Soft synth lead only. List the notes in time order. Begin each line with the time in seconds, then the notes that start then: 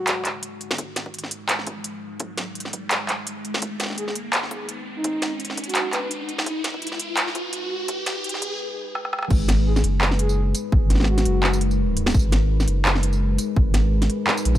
Already playing: F#4
3.97 G#4
4.07 G#4
4.96 D#4
5.67 F#4
5.93 B4
6.03 B4
9.66 G#4
9.75 G#4
10.19 G#4
11.08 F#4